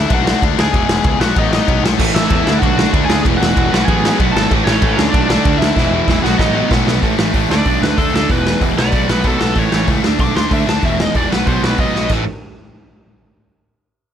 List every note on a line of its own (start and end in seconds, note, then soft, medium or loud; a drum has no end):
0.00 0.10 D3 loud
0.00 0.14 E5 loud
0.10 0.33 B1 loud
0.10 0.24 D3 medium
0.10 0.25 A3 loud
0.10 0.25 D4 loud
0.10 0.41 F#4 medium
0.10 kick loud
0.10 ride loud
0.14 0.42 F#5 loud
0.26 0.41 D3 medium
0.26 0.40 A3 loud
0.26 0.40 D4 medium
0.26 snare loud
0.41 0.53 D2 loud
0.41 0.55 D3 medium
0.41 0.56 A3 medium
0.41 0.57 D4 loud
0.41 kick loud
0.41 ride medium
0.57 0.69 D2 loud
0.57 0.72 D3 medium
0.57 0.72 A3 medium
0.57 0.72 D4 medium
0.57 1.18 G#4 medium
0.57 snare loud
0.61 1.24 G#5 loud
0.72 0.85 E1 loud
0.72 0.89 E2 loud
0.72 0.88 B2 loud
0.72 0.88 E3 loud
0.72 kick loud
0.72 ride medium
0.88 0.99 E1 medium
0.88 1.04 E2 medium
0.88 1.04 B2 medium
0.88 1.04 E3 loud
0.88 snare loud
1.04 1.15 C#2 loud
1.04 1.20 E2 medium
1.04 1.19 B2 medium
1.04 1.20 E3 medium
1.04 kick loud
1.04 ride medium
1.20 1.31 B1 medium
1.20 1.35 B2 loud
1.20 1.35 F#3 loud
1.20 1.34 B3 loud
1.20 1.35 F#4 medium
1.20 1.36 F#5 loud
1.20 snare loud
1.35 1.59 A1 medium
1.35 1.51 B2 medium
1.35 1.52 F#3 medium
1.35 1.52 B3 loud
1.35 1.52 D#4 medium
1.35 1.52 D#5 medium
1.35 kick loud
1.35 ride medium
1.52 1.66 B2 medium
1.52 1.66 F#3 medium
1.52 1.66 B3 medium
1.52 1.82 D#4 medium
1.52 1.81 D#5 medium
1.52 snare loud
1.67 1.79 B1 loud
1.67 1.82 B2 medium
1.67 1.83 F#3 medium
1.67 1.83 B3 loud
1.67 kick loud
1.67 ride medium
1.83 1.94 B1 medium
1.83 1.98 B2 medium
1.83 1.98 F#3 medium
1.83 1.99 B3 loud
1.83 snare loud
1.99 2.10 A1 medium
1.99 2.16 A2 loud
1.99 2.15 E3 loud
1.99 2.15 A3 loud
1.99 kick loud
1.99 crash loud
2.15 2.26 A1 medium
2.15 2.30 A2 medium
2.15 2.30 E3 medium
2.15 2.30 A3 loud
2.15 2.59 E4 medium
2.15 2.59 E5 medium
2.15 snare loud
2.30 2.42 E2 loud
2.30 2.45 A2 medium
2.30 2.46 E3 medium
2.30 2.46 A3 loud
2.30 kick loud
2.30 ride medium
2.46 2.57 D2 medium
2.46 2.62 D3 loud
2.46 2.62 A3 loud
2.46 2.61 D4 loud
2.46 snare loud
2.59 2.84 B1 loud
2.59 2.77 A3 loud
2.59 2.78 D4 loud
2.59 2.91 F#4 medium
2.59 2.89 F#5 loud
2.59 kick loud
2.63 2.77 D3 medium
2.63 ride medium
2.78 2.93 D3 medium
2.78 2.92 A3 medium
2.78 2.92 D4 medium
2.78 snare loud
2.93 3.04 D2 medium
2.93 3.09 D3 medium
2.93 3.09 A3 medium
2.93 3.10 D4 medium
2.93 kick loud
2.93 ride medium
3.05 3.23 G#4 medium
3.05 3.21 G#5 loud
3.09 3.20 D2 loud
3.09 3.24 D3 medium
3.09 3.25 A3 medium
3.09 3.25 D4 loud
3.09 snare loud
3.25 3.36 E1 loud
3.25 3.40 E2 loud
3.25 3.40 B2 loud
3.25 3.39 E3 loud
3.25 kick loud
3.25 ride medium
3.37 3.54 B2 medium
3.37 3.55 E3 medium
3.37 3.85 F#4 medium
3.37 3.87 F#5 loud
3.41 3.52 E1 medium
3.41 3.54 E2 medium
3.41 snare loud
3.55 3.68 E1 loud
3.55 3.70 E2 medium
3.55 3.71 B2 medium
3.55 3.71 E3 loud
3.55 kick loud
3.55 ride medium
3.72 3.83 B1 loud
3.72 3.88 B2 loud
3.72 3.87 F#3 loud
3.72 3.87 B3 loud
3.72 snare loud
3.85 4.10 A1 loud
3.85 4.04 F#3 loud
3.85 4.04 B3 loud
3.85 4.17 G#4 medium
3.85 4.15 G#5 loud
3.85 kick loud
3.85 ride medium
3.89 4.03 B2 medium
4.04 4.20 B2 medium
4.04 4.20 F#3 loud
4.04 4.19 B3 medium
4.04 snare loud
4.19 4.30 B1 loud
4.19 4.35 B2 medium
4.19 4.35 F#3 medium
4.19 4.36 B3 loud
4.19 kick loud
4.19 ride medium
4.32 4.46 G#1 loud
4.32 4.50 B2 medium
4.32 4.48 A5 loud
4.36 4.50 F#3 loud
4.36 4.51 B3 loud
4.36 4.50 A4 medium
4.36 snare loud
4.51 4.62 A1 loud
4.51 4.66 A2 loud
4.51 4.66 E3 loud
4.51 4.66 A3 loud
4.51 kick loud
4.51 ride medium
4.64 4.78 A1 loud
4.64 4.80 A2 medium
4.64 4.81 E3 medium
4.64 4.81 A3 loud
4.64 5.09 C#5 loud
4.64 snare loud
4.69 5.12 C#4 medium
4.81 4.93 A1 medium
4.81 4.96 A2 medium
4.81 4.97 E3 loud
4.81 4.96 A3 loud
4.81 kick loud
4.81 ride medium
4.97 5.08 D2 medium
4.97 5.11 D3 loud
4.97 5.11 A3 loud
4.97 5.11 D4 loud
4.97 snare loud
5.10 5.36 B1 loud
5.10 5.27 D3 medium
5.10 5.27 A3 loud
5.10 5.28 D4 loud
5.10 5.58 D5 loud
5.14 5.58 D4 medium
5.14 kick loud
5.14 ride medium
5.28 5.45 D3 medium
5.28 5.44 A3 loud
5.28 5.44 D4 loud
5.28 snare loud
5.45 5.56 D2 medium
5.45 5.59 D3 medium
5.45 5.60 A3 medium
5.45 5.61 D4 loud
5.45 kick loud
5.45 ride medium
5.58 5.71 D2 loud
5.58 5.75 D3 medium
5.58 5.76 A3 medium
5.58 5.76 D4 medium
5.58 6.20 E4 medium
5.58 6.18 E5 loud
5.58 snare loud
5.76 5.87 E1 loud
5.76 5.91 E2 loud
5.76 5.91 B2 loud
5.76 5.91 E3 loud
5.76 kick loud
5.76 snare medium
5.89 6.01 E1 medium
5.89 6.06 E2 medium
5.89 6.06 B2 loud
5.89 6.07 E3 loud
6.07 6.19 E1 medium
6.07 6.22 E2 medium
6.07 6.21 B2 medium
6.07 6.23 E3 medium
6.07 kick loud
6.07 snare medium
6.22 6.34 B1 medium
6.22 6.38 B2 loud
6.22 6.38 F#3 loud
6.22 6.37 B3 loud
6.22 6.39 F#4 medium
6.22 6.40 F#5 medium
6.22 snare medium
6.38 6.62 A1 medium
6.38 6.53 B2 medium
6.38 6.53 F#3 medium
6.38 6.53 B3 loud
6.38 6.69 D#4 medium
6.38 6.68 D#5 medium
6.38 kick loud
6.38 snare loud
6.54 6.69 B2 medium
6.54 6.69 F#3 medium
6.54 6.68 B3 loud
6.69 6.82 B1 loud
6.69 6.85 B2 medium
6.69 6.86 F#3 medium
6.69 6.86 B3 medium
6.69 kick loud
6.69 snare loud
6.86 6.97 B1 medium
6.86 7.01 B2 medium
6.86 7.02 F#3 medium
6.86 7.02 B3 loud
6.86 snare loud
7.02 7.14 A1 medium
7.02 7.18 A2 medium
7.02 7.18 E3 loud
7.02 7.17 A3 loud
7.02 kick loud
7.02 open hi-hat medium
7.18 7.31 A1 medium
7.18 7.33 A2 medium
7.18 7.34 E3 medium
7.18 7.34 A3 medium
7.18 snare loud
7.34 7.46 A1 medium
7.34 7.49 A2 medium
7.34 7.49 E3 medium
7.34 7.49 A3 loud
7.34 kick loud
7.34 open hi-hat medium
7.49 7.61 D2 medium
7.49 7.66 D3 medium
7.49 7.66 A3 loud
7.49 7.65 D4 loud
7.49 7.81 D5 loud
7.49 snare loud
7.65 7.78 B1 medium
7.65 7.80 D3 medium
7.65 7.81 A3 medium
7.65 7.81 D4 medium
7.65 kick loud
7.65 open hi-hat medium
7.82 7.93 D2 medium
7.82 7.97 D3 medium
7.82 7.96 A3 medium
7.82 7.95 D4 medium
7.82 7.97 B4 medium
7.82 snare loud
7.96 8.10 D2 medium
7.96 8.12 D3 medium
7.96 8.13 A3 medium
7.96 8.13 D4 loud
7.96 8.13 A4 medium
7.96 kick loud
7.96 open hi-hat medium
8.13 8.25 D2 medium
8.13 8.28 D3 medium
8.13 8.28 A3 medium
8.13 8.29 D4 medium
8.13 8.30 A4 medium
8.13 snare loud
8.29 8.53 E1 medium
8.29 8.46 E2 loud
8.29 8.45 B2 loud
8.29 8.44 E3 loud
8.29 8.61 B4 loud
8.29 kick loud
8.29 open hi-hat medium
8.46 8.60 E2 medium
8.46 8.60 B2 medium
8.46 8.60 E3 loud
8.46 snare loud
8.61 8.73 E1 medium
8.61 8.76 E2 medium
8.61 8.76 B2 medium
8.61 8.76 E3 loud
8.61 kick loud
8.61 open hi-hat medium
8.77 8.89 B1 medium
8.77 8.92 B2 medium
8.77 8.92 F#3 loud
8.77 8.92 B3 loud
8.77 9.08 D5 medium
8.77 snare loud
8.92 9.04 B1 medium
8.92 9.07 B2 medium
8.92 9.08 F#3 medium
8.92 9.08 B3 medium
8.92 kick loud
8.92 open hi-hat medium
9.08 9.21 B1 medium
9.08 9.25 B2 medium
9.08 9.24 F#3 medium
9.08 9.23 B3 medium
9.08 9.27 B4 medium
9.08 snare loud
9.24 9.36 B1 medium
9.24 9.38 B2 medium
9.24 9.38 F#3 medium
9.24 9.39 B3 loud
9.24 9.40 A4 loud
9.24 kick loud
9.24 open hi-hat medium
9.39 9.53 B1 medium
9.39 9.54 B2 medium
9.39 9.54 F#3 medium
9.39 9.55 B3 medium
9.39 9.56 A4 medium
9.39 snare loud
9.55 9.68 A1 medium
9.55 9.72 A2 medium
9.55 9.72 E3 loud
9.55 9.71 A3 loud
9.55 9.88 C#5 medium
9.55 kick loud
9.55 open hi-hat medium
9.72 9.84 A1 medium
9.72 9.86 A2 medium
9.72 9.87 E3 medium
9.72 9.87 A3 medium
9.72 snare loud
9.87 9.99 C#2 medium
9.87 10.02 A2 medium
9.87 10.02 E3 medium
9.87 10.02 A3 medium
9.87 kick loud
9.87 open hi-hat medium
10.03 10.16 D2 medium
10.03 10.20 D3 loud
10.03 10.19 A3 loud
10.03 10.19 D4 loud
10.03 snare loud
10.19 10.31 B1 medium
10.19 10.34 D3 medium
10.19 10.34 A3 medium
10.19 10.35 D4 medium
10.19 10.35 D6 loud
10.19 kick loud
10.19 open hi-hat medium
10.35 10.47 D2 medium
10.35 10.50 D3 medium
10.35 10.49 A3 medium
10.35 10.48 D4 medium
10.35 10.51 C6 loud
10.35 snare loud
10.50 10.63 D2 medium
10.50 10.65 D3 medium
10.50 10.66 A3 medium
10.50 10.66 D4 medium
10.50 10.67 E5 medium
10.50 kick loud
10.50 open hi-hat medium
10.66 10.78 D2 medium
10.66 10.81 D3 medium
10.66 10.82 A3 medium
10.66 10.82 D4 medium
10.66 10.83 A5 loud
10.66 snare loud
10.83 11.07 E1 medium
10.83 10.98 E2 medium
10.83 10.98 B2 loud
10.83 10.97 E3 loud
10.83 10.99 E5 medium
10.83 kick loud
10.83 open hi-hat medium
10.99 11.14 E2 medium
10.99 11.14 B2 medium
10.99 11.15 E3 medium
10.99 11.15 D#5 medium
10.99 snare loud
11.14 11.26 E1 medium
11.14 11.30 E2 medium
11.14 11.30 B2 medium
11.14 11.30 E3 loud
11.14 11.33 D5 medium
11.14 kick loud
11.14 open hi-hat medium
11.31 11.43 B1 medium
11.31 11.47 B2 medium
11.31 11.47 F#3 medium
11.31 11.47 B3 loud
11.31 11.47 B4 medium
11.31 snare loud
11.46 11.58 B1 medium
11.46 11.63 B2 medium
11.46 11.64 F#3 medium
11.46 11.64 B3 medium
11.46 11.64 C5 medium
11.46 kick loud
11.46 open hi-hat medium
11.62 11.74 B1 medium
11.62 11.78 B2 medium
11.62 11.78 F#3 medium
11.62 11.77 B3 medium
11.62 11.78 B4 medium
11.62 snare loud
11.78 11.90 B1 medium
11.78 11.94 B2 medium
11.78 11.94 F#3 medium
11.78 11.95 B3 loud
11.78 12.10 D#5 medium
11.78 kick loud
11.78 open hi-hat medium
11.95 12.07 B1 medium
11.95 12.09 B2 medium
11.95 12.09 F#3 medium
11.95 12.10 B3 medium
11.95 snare medium
12.09 12.25 A1 medium
12.09 12.22 A2 medium
12.09 12.23 E3 loud
12.09 12.23 A3 loud
12.09 kick loud
12.09 crash medium